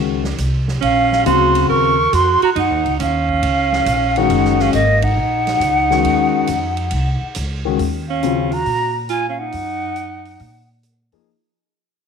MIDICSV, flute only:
0, 0, Header, 1, 2, 480
1, 0, Start_track
1, 0, Tempo, 435098
1, 917, Time_signature, 4, 2, 24, 8
1, 13319, End_track
2, 0, Start_track
2, 0, Title_t, "Flute"
2, 0, Program_c, 0, 73
2, 917, Note_on_c, 0, 77, 93
2, 1363, Note_off_c, 0, 77, 0
2, 1391, Note_on_c, 0, 84, 92
2, 1840, Note_off_c, 0, 84, 0
2, 1871, Note_on_c, 0, 85, 104
2, 2371, Note_on_c, 0, 84, 97
2, 2387, Note_off_c, 0, 85, 0
2, 2686, Note_off_c, 0, 84, 0
2, 2693, Note_on_c, 0, 82, 86
2, 2759, Note_off_c, 0, 82, 0
2, 2854, Note_on_c, 0, 78, 81
2, 3293, Note_off_c, 0, 78, 0
2, 3327, Note_on_c, 0, 77, 90
2, 4604, Note_on_c, 0, 78, 87
2, 4621, Note_off_c, 0, 77, 0
2, 5090, Note_on_c, 0, 77, 71
2, 5106, Note_off_c, 0, 78, 0
2, 5220, Note_off_c, 0, 77, 0
2, 5227, Note_on_c, 0, 75, 86
2, 5559, Note_on_c, 0, 78, 89
2, 5575, Note_off_c, 0, 75, 0
2, 8115, Note_off_c, 0, 78, 0
2, 8926, Note_on_c, 0, 77, 77
2, 9413, Note_on_c, 0, 82, 95
2, 9430, Note_off_c, 0, 77, 0
2, 9885, Note_off_c, 0, 82, 0
2, 10040, Note_on_c, 0, 80, 93
2, 10241, Note_off_c, 0, 80, 0
2, 10260, Note_on_c, 0, 77, 64
2, 10355, Note_on_c, 0, 78, 98
2, 10372, Note_off_c, 0, 77, 0
2, 11796, Note_off_c, 0, 78, 0
2, 13319, End_track
0, 0, End_of_file